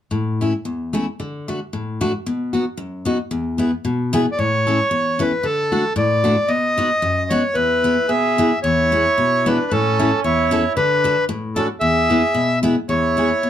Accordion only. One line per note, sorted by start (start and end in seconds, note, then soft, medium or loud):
4.32 4.39 D5 medium
4.38 5.22 C#5 medium
5.21 5.46 B4 medium
5.45 5.93 A4 medium
5.98 6.51 D5 medium
6.48 7.32 D#5 medium
7.30 7.55 C#5 medium
7.54 8.10 B4 medium
8.09 8.59 E5 medium
8.63 9.48 C#5 loud
9.47 9.72 B4 medium
9.72 10.20 A4 medium
10.24 10.72 C#5 medium
10.76 11.25 B4 medium
11.56 11.67 A4 medium
11.80 12.59 E5 loud
12.89 13.50 C#5 medium